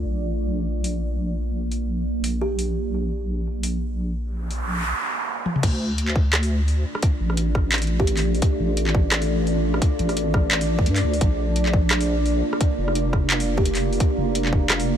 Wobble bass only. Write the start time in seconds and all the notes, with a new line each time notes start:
0.05 A#1
5.63 D2
7.20 A1
8.60 A1
9.99 A1
10.86 G2
11.04 D2
11.21 A#1
12.78 F1
14.18 F1